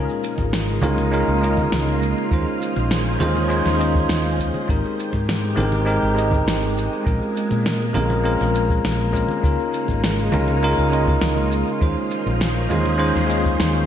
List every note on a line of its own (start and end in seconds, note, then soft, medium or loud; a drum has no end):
0.00 2.29 C#3 medium
0.00 0.78 G#3 medium
0.00 2.29 G#3 medium
0.00 4.65 A#3 medium
0.00 0.79 C#4 medium
0.00 0.79 D#4 medium
0.00 2.28 D#4 medium
0.00 0.80 F4 medium
0.00 4.65 F4 medium
0.00 0.80 A#4 medium
0.09 shaker soft
0.24 shaker medium
0.38 0.78 G#1 medium
0.38 kick medium
0.38 muted conga medium
0.38 shaker soft
0.53 snare loud
0.53 shaker soft
0.69 shaker soft
0.82 1.23 C#2 loud
0.82 1.08 G#3 medium
0.82 1.08 C#4 medium
0.82 1.08 D#4 medium
0.82 1.09 F4 medium
0.82 1.09 A#4 loud
0.82 high conga medium
0.82 low conga medium
0.82 shaker medium
0.98 muted conga medium
0.98 shaker soft
1.11 1.38 G#3 medium
1.11 1.39 C#4 medium
1.11 1.39 D#4 medium
1.11 1.39 F4 medium
1.11 1.40 A#4 loud
1.11 shaker soft
1.28 1.67 C#2 medium
1.28 shaker soft
1.41 2.27 G#3 medium
1.41 2.28 C#4 medium
1.41 2.28 D#4 medium
1.41 2.28 F4 medium
1.41 shaker medium
1.45 2.29 D#5 medium
1.57 kick loud
1.57 high conga medium
1.57 shaker soft
1.72 2.12 C#2 medium
1.72 snare medium
1.72 shaker soft
1.87 muted conga soft
1.87 shaker soft
2.03 shaker medium
2.18 shaker soft
2.30 2.44 D#2 loud
2.30 4.66 D#3 medium
2.30 3.16 G#3 medium
2.30 3.17 C#4 medium
2.30 4.66 C#4 medium
2.30 3.17 D#4 medium
2.30 3.17 F4 medium
2.30 4.66 G#4 loud
2.30 7.02 C5 medium
2.30 3.18 C5 medium
2.30 kick loud
2.30 shaker soft
2.48 shaker soft
2.62 shaker medium
2.76 3.16 A#1 medium
2.76 muted conga soft
2.76 shaker soft
2.91 snare loud
2.91 shaker soft
3.07 shaker soft
3.19 3.61 D#2 loud
3.19 3.46 G#3 medium
3.19 3.46 C#4 medium
3.19 3.46 D#4 medium
3.19 3.46 F4 medium
3.19 3.46 C5 loud
3.19 high conga loud
3.19 low conga loud
3.19 shaker medium
3.36 muted conga medium
3.36 shaker soft
3.48 3.76 G#3 loud
3.48 3.76 C#4 medium
3.48 3.76 D#4 medium
3.48 3.77 F4 medium
3.48 3.77 C5 loud
3.48 shaker soft
3.66 4.05 D#2 medium
3.66 snare soft
3.66 shaker soft
3.77 4.64 G#3 medium
3.77 4.64 C#4 medium
3.77 4.64 D#4 medium
3.77 4.65 F4 medium
3.77 4.65 D#5 medium
3.77 shaker medium
3.95 kick loud
3.95 shaker soft
4.09 4.50 D#2 medium
4.09 snare loud
4.09 shaker soft
4.25 shaker soft
4.39 kick medium
4.39 shaker medium
4.54 high conga medium
4.54 shaker soft
4.66 4.81 G#1 loud
4.66 5.53 G#3 medium
4.66 9.39 G#3 medium
4.66 5.54 C4 medium
4.66 5.54 D#4 medium
4.66 7.03 G4 medium
4.66 5.55 G4 medium
4.66 kick loud
4.66 shaker soft
4.70 5.55 A#4 medium
4.85 shaker soft
5.00 shaker medium
5.13 5.54 G#2 medium
5.13 kick medium
5.13 muted conga soft
5.13 shaker soft
5.29 snare medium
5.29 shaker soft
5.45 shaker soft
5.55 5.98 G#1 loud
5.55 5.83 G#3 medium
5.55 5.83 C4 medium
5.55 5.83 D#4 medium
5.55 5.84 G4 medium
5.55 5.84 A#4 loud
5.55 high conga loud
5.55 low conga medium
5.60 shaker medium
5.72 muted conga medium
5.72 shaker soft
5.85 6.13 G#3 medium
5.85 6.13 C4 medium
5.85 6.13 D#4 medium
5.85 6.14 G4 medium
5.85 6.14 A#4 loud
5.85 shaker soft
6.03 6.43 G#1 medium
6.03 shaker soft
6.15 7.01 G#3 medium
6.15 7.02 C4 medium
6.15 7.02 D#4 medium
6.15 7.03 G4 medium
6.15 7.03 D#5 medium
6.15 shaker medium
6.31 kick loud
6.31 high conga medium
6.31 shaker soft
6.47 6.87 G#1 medium
6.47 snare loud
6.47 shaker soft
6.63 muted conga soft
6.63 shaker soft
6.78 shaker medium
6.93 shaker soft
7.03 7.19 A#1 loud
7.03 7.90 G#3 medium
7.03 11.78 A#3 medium
7.03 7.91 C4 medium
7.03 7.91 C#4 medium
7.03 7.92 F4 medium
7.03 7.92 A#4 medium
7.03 kick loud
7.07 shaker soft
7.23 shaker soft
7.37 shaker medium
7.51 7.91 A#2 medium
7.51 muted conga soft
7.51 shaker soft
7.66 snare loud
7.66 shaker soft
7.81 shaker soft
7.93 8.36 A#1 loud
7.93 8.20 G#3 medium
7.93 8.21 C4 medium
7.93 8.21 C#4 medium
7.93 8.21 F4 medium
7.93 8.21 A#4 loud
7.93 high conga medium
7.93 low conga loud
7.93 shaker medium
8.10 muted conga medium
8.10 shaker soft
8.24 8.51 G#3 medium
8.24 8.51 C4 medium
8.24 8.51 C#4 medium
8.24 8.52 F4 medium
8.24 8.52 A#4 loud
8.24 shaker soft
8.41 8.80 A#1 medium
8.41 snare soft
8.41 shaker soft
8.55 shaker medium
8.70 kick loud
8.70 shaker soft
8.85 9.25 A#1 medium
8.85 snare loud
8.85 shaker soft
9.01 shaker soft
9.13 9.40 G#3 medium
9.13 9.40 C4 medium
9.13 9.40 C#4 medium
9.13 9.40 F4 medium
9.13 9.40 A#4 loud
9.13 kick medium
9.13 shaker medium
9.29 high conga medium
9.29 shaker soft
9.42 9.56 C#2 loud
9.42 11.79 C#3 medium
9.42 10.28 G#3 medium
9.42 11.79 G#3 medium
9.42 10.29 C#4 medium
9.42 10.29 D#4 medium
9.42 11.79 D#4 medium
9.42 13.86 F4 medium
9.42 10.30 F4 medium
9.42 10.30 A#4 medium
9.42 kick loud
9.42 shaker soft
9.60 shaker soft
9.74 shaker medium
9.88 10.29 G#1 medium
9.88 kick medium
9.88 muted conga medium
9.88 shaker soft
10.04 snare loud
10.04 shaker soft
10.19 shaker soft
10.32 10.74 C#2 loud
10.32 10.59 G#3 medium
10.32 10.59 C#4 medium
10.32 10.59 D#4 medium
10.32 10.59 F4 medium
10.32 10.60 A#4 loud
10.32 high conga loud
10.32 low conga medium
10.32 shaker medium
10.48 muted conga medium
10.48 shaker soft
10.62 10.89 G#3 medium
10.62 10.90 C#4 medium
10.62 10.90 D#4 medium
10.62 10.90 F4 medium
10.62 10.90 A#4 loud
10.62 shaker soft
10.78 11.18 C#2 medium
10.78 shaker soft
10.90 11.77 G#3 medium
10.90 11.77 C#4 medium
10.90 11.78 D#4 medium
10.90 11.78 F4 medium
10.90 shaker medium
10.94 11.79 D#5 medium
11.07 kick loud
11.07 high conga medium
11.07 shaker soft
11.21 11.62 C#2 medium
11.21 snare medium
11.21 shaker soft
11.37 muted conga soft
11.37 shaker soft
11.52 shaker medium
11.67 shaker soft
11.79 11.94 D#2 loud
11.79 13.86 D#3 medium
11.79 12.66 G#3 medium
11.79 13.86 A#3 medium
11.79 12.66 C#4 medium
11.79 13.86 C#4 medium
11.79 12.67 D#4 medium
11.79 12.67 F4 medium
11.79 13.86 G#4 medium
11.79 13.86 C5 medium
11.79 12.68 C5 medium
11.79 kick loud
11.79 shaker soft
11.97 shaker soft
12.11 shaker medium
12.26 12.66 A#1 medium
12.26 muted conga soft
12.26 shaker soft
12.41 snare loud
12.41 shaker soft
12.57 shaker soft
12.69 13.11 D#2 loud
12.69 12.96 G#3 medium
12.69 12.96 C#4 medium
12.69 12.96 D#4 medium
12.69 12.97 F4 medium
12.69 12.97 C5 loud
12.69 high conga loud
12.69 low conga medium
12.69 shaker medium
12.86 muted conga medium
12.86 shaker soft
12.98 13.25 G#3 loud
12.98 13.26 C#4 medium
12.98 13.26 D#4 medium
12.98 13.26 F4 medium
12.98 13.27 C5 loud
12.98 shaker soft
13.16 13.56 D#2 medium
13.16 snare soft
13.16 shaker soft
13.26 13.86 G#3 medium
13.26 13.86 C#4 medium
13.26 13.86 D#4 medium
13.26 13.86 F4 medium
13.26 13.86 D#5 medium
13.30 shaker medium
13.46 kick loud
13.46 shaker soft
13.60 13.86 D#2 medium
13.60 snare medium
13.60 shaker soft
13.76 shaker soft